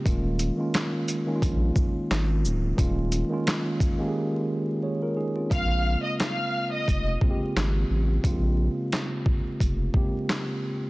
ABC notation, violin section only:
X:1
M:4/4
L:1/16
Q:"Swing 16ths" 1/4=88
K:Bbdor
V:1 name="Violin section"
z16 | z16 | [ff']3 [ee'] [ff']3 [ee']2 z6 z | z16 |]